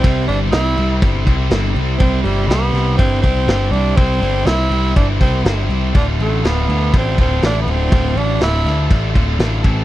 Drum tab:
CC |xxxxxxxx|xxxxxxxx|xxxxxxxx|xxxxxxxx|
SD |--o---o-|--oo--o-|--o---o-|--o---o-|
BD |o---oo--|o---oo--|o---oo--|o---oo--|

CC |xxxxxxxx|
SD |--oo--o-|
BD |o---oo-o|